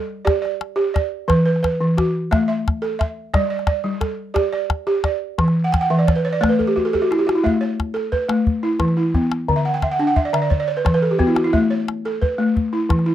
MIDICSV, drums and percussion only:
0, 0, Header, 1, 2, 480
1, 0, Start_track
1, 0, Tempo, 341297
1, 1814, Time_signature, 12, 3, 24, 8
1, 18489, End_track
2, 0, Start_track
2, 0, Title_t, "Calabash"
2, 384, Note_on_c, 9, 36, 60
2, 384, Note_on_c, 9, 38, 67
2, 524, Note_off_c, 9, 36, 0
2, 524, Note_off_c, 9, 38, 0
2, 636, Note_on_c, 9, 38, 18
2, 777, Note_off_c, 9, 38, 0
2, 858, Note_on_c, 9, 38, 60
2, 999, Note_off_c, 9, 38, 0
2, 1107, Note_on_c, 9, 38, 17
2, 1248, Note_off_c, 9, 38, 0
2, 1348, Note_on_c, 9, 36, 58
2, 1348, Note_on_c, 9, 38, 56
2, 1489, Note_off_c, 9, 36, 0
2, 1489, Note_off_c, 9, 38, 0
2, 1823, Note_on_c, 9, 36, 58
2, 1823, Note_on_c, 9, 38, 61
2, 1964, Note_off_c, 9, 36, 0
2, 1964, Note_off_c, 9, 38, 0
2, 2194, Note_on_c, 9, 38, 18
2, 2310, Note_off_c, 9, 38, 0
2, 2310, Note_on_c, 9, 36, 57
2, 2310, Note_on_c, 9, 38, 58
2, 2450, Note_off_c, 9, 36, 0
2, 2450, Note_off_c, 9, 38, 0
2, 2787, Note_on_c, 9, 36, 58
2, 2787, Note_on_c, 9, 38, 60
2, 2928, Note_off_c, 9, 36, 0
2, 2928, Note_off_c, 9, 38, 0
2, 3271, Note_on_c, 9, 36, 67
2, 3271, Note_on_c, 9, 38, 60
2, 3412, Note_off_c, 9, 36, 0
2, 3412, Note_off_c, 9, 38, 0
2, 3518, Note_on_c, 9, 38, 21
2, 3658, Note_off_c, 9, 38, 0
2, 3765, Note_on_c, 9, 36, 60
2, 3765, Note_on_c, 9, 38, 62
2, 3905, Note_off_c, 9, 36, 0
2, 3905, Note_off_c, 9, 38, 0
2, 4000, Note_on_c, 9, 38, 19
2, 4140, Note_off_c, 9, 38, 0
2, 4232, Note_on_c, 9, 36, 57
2, 4232, Note_on_c, 9, 38, 58
2, 4372, Note_off_c, 9, 36, 0
2, 4372, Note_off_c, 9, 38, 0
2, 4699, Note_on_c, 9, 36, 64
2, 4699, Note_on_c, 9, 38, 64
2, 4839, Note_off_c, 9, 36, 0
2, 4839, Note_off_c, 9, 38, 0
2, 5051, Note_on_c, 9, 38, 20
2, 5161, Note_off_c, 9, 38, 0
2, 5161, Note_on_c, 9, 36, 61
2, 5161, Note_on_c, 9, 38, 62
2, 5301, Note_off_c, 9, 36, 0
2, 5301, Note_off_c, 9, 38, 0
2, 5643, Note_on_c, 9, 36, 62
2, 5643, Note_on_c, 9, 38, 61
2, 5784, Note_off_c, 9, 36, 0
2, 5784, Note_off_c, 9, 38, 0
2, 6131, Note_on_c, 9, 36, 64
2, 6131, Note_on_c, 9, 38, 64
2, 6272, Note_off_c, 9, 36, 0
2, 6272, Note_off_c, 9, 38, 0
2, 6377, Note_on_c, 9, 38, 21
2, 6518, Note_off_c, 9, 38, 0
2, 6609, Note_on_c, 9, 36, 68
2, 6609, Note_on_c, 9, 38, 69
2, 6750, Note_off_c, 9, 36, 0
2, 6750, Note_off_c, 9, 38, 0
2, 6851, Note_on_c, 9, 38, 20
2, 6992, Note_off_c, 9, 38, 0
2, 7086, Note_on_c, 9, 36, 62
2, 7086, Note_on_c, 9, 38, 61
2, 7227, Note_off_c, 9, 36, 0
2, 7227, Note_off_c, 9, 38, 0
2, 7575, Note_on_c, 9, 36, 67
2, 7575, Note_on_c, 9, 38, 65
2, 7706, Note_off_c, 9, 38, 0
2, 7706, Note_on_c, 9, 38, 25
2, 7716, Note_off_c, 9, 36, 0
2, 7847, Note_off_c, 9, 38, 0
2, 8070, Note_on_c, 9, 36, 58
2, 8070, Note_on_c, 9, 38, 61
2, 8193, Note_off_c, 9, 38, 0
2, 8193, Note_on_c, 9, 38, 23
2, 8211, Note_off_c, 9, 36, 0
2, 8334, Note_off_c, 9, 38, 0
2, 8442, Note_on_c, 9, 38, 19
2, 8554, Note_off_c, 9, 38, 0
2, 8554, Note_on_c, 9, 36, 67
2, 8554, Note_on_c, 9, 38, 59
2, 8693, Note_off_c, 9, 38, 0
2, 8693, Note_on_c, 9, 38, 21
2, 8694, Note_off_c, 9, 36, 0
2, 8834, Note_off_c, 9, 38, 0
2, 9051, Note_on_c, 9, 36, 64
2, 9051, Note_on_c, 9, 38, 66
2, 9191, Note_off_c, 9, 36, 0
2, 9191, Note_off_c, 9, 38, 0
2, 9284, Note_on_c, 9, 36, 38
2, 9425, Note_off_c, 9, 36, 0
2, 9523, Note_on_c, 9, 36, 42
2, 9663, Note_off_c, 9, 36, 0
2, 9769, Note_on_c, 9, 36, 45
2, 9910, Note_off_c, 9, 36, 0
2, 10012, Note_on_c, 9, 38, 49
2, 10153, Note_off_c, 9, 38, 0
2, 10254, Note_on_c, 9, 38, 58
2, 10394, Note_off_c, 9, 38, 0
2, 10495, Note_on_c, 9, 36, 68
2, 10636, Note_off_c, 9, 36, 0
2, 10732, Note_on_c, 9, 38, 18
2, 10873, Note_off_c, 9, 38, 0
2, 10966, Note_on_c, 9, 36, 54
2, 10966, Note_on_c, 9, 38, 54
2, 11107, Note_off_c, 9, 36, 0
2, 11107, Note_off_c, 9, 38, 0
2, 11202, Note_on_c, 9, 38, 19
2, 11342, Note_off_c, 9, 38, 0
2, 11429, Note_on_c, 9, 36, 58
2, 11570, Note_off_c, 9, 36, 0
2, 11664, Note_on_c, 9, 38, 67
2, 11805, Note_off_c, 9, 38, 0
2, 11909, Note_on_c, 9, 36, 59
2, 12049, Note_off_c, 9, 36, 0
2, 12371, Note_on_c, 9, 36, 59
2, 12371, Note_on_c, 9, 38, 60
2, 12495, Note_off_c, 9, 38, 0
2, 12495, Note_on_c, 9, 38, 18
2, 12512, Note_off_c, 9, 36, 0
2, 12636, Note_off_c, 9, 38, 0
2, 12860, Note_on_c, 9, 36, 58
2, 13000, Note_off_c, 9, 36, 0
2, 13101, Note_on_c, 9, 38, 66
2, 13242, Note_off_c, 9, 38, 0
2, 13345, Note_on_c, 9, 36, 65
2, 13486, Note_off_c, 9, 36, 0
2, 13579, Note_on_c, 9, 38, 18
2, 13719, Note_off_c, 9, 38, 0
2, 13816, Note_on_c, 9, 36, 59
2, 13816, Note_on_c, 9, 38, 53
2, 13957, Note_off_c, 9, 36, 0
2, 13957, Note_off_c, 9, 38, 0
2, 14061, Note_on_c, 9, 38, 17
2, 14202, Note_off_c, 9, 38, 0
2, 14297, Note_on_c, 9, 36, 61
2, 14438, Note_off_c, 9, 36, 0
2, 14544, Note_on_c, 9, 38, 62
2, 14684, Note_off_c, 9, 38, 0
2, 14785, Note_on_c, 9, 36, 64
2, 14926, Note_off_c, 9, 36, 0
2, 15273, Note_on_c, 9, 36, 65
2, 15273, Note_on_c, 9, 38, 65
2, 15392, Note_off_c, 9, 38, 0
2, 15392, Note_on_c, 9, 38, 18
2, 15413, Note_off_c, 9, 36, 0
2, 15533, Note_off_c, 9, 38, 0
2, 15748, Note_on_c, 9, 36, 61
2, 15889, Note_off_c, 9, 36, 0
2, 15982, Note_on_c, 9, 38, 63
2, 16123, Note_off_c, 9, 38, 0
2, 16227, Note_on_c, 9, 36, 57
2, 16367, Note_off_c, 9, 36, 0
2, 16713, Note_on_c, 9, 38, 61
2, 16854, Note_off_c, 9, 38, 0
2, 16950, Note_on_c, 9, 38, 20
2, 17090, Note_off_c, 9, 38, 0
2, 17191, Note_on_c, 9, 36, 60
2, 17332, Note_off_c, 9, 36, 0
2, 17674, Note_on_c, 9, 36, 69
2, 17815, Note_off_c, 9, 36, 0
2, 18146, Note_on_c, 9, 36, 69
2, 18146, Note_on_c, 9, 38, 65
2, 18268, Note_off_c, 9, 38, 0
2, 18268, Note_on_c, 9, 38, 20
2, 18286, Note_off_c, 9, 36, 0
2, 18409, Note_off_c, 9, 38, 0
2, 18489, End_track
0, 0, End_of_file